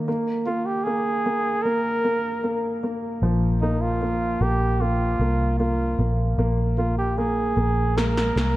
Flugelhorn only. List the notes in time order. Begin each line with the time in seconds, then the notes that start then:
0.46 F4
0.66 G4
0.84 G#4
1.62 A#4
3.61 D#4
3.81 F4
4.42 G4
4.81 F4
5.59 F4
6.78 F4
6.98 G4
7.17 G#4
7.98 A#4